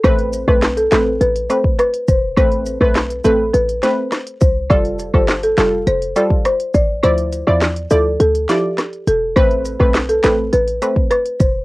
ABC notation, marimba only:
X:1
M:4/4
L:1/16
Q:1/4=103
K:Am
V:1 name="Marimba"
c z2 B z A A z B z c z B z c z | c z2 B z2 A z B z c z3 c z | d z2 c z A A z c z d z c z d z | c z2 d z2 A z A z G z3 A z |
c z2 B z A A z B z c z B z c z |]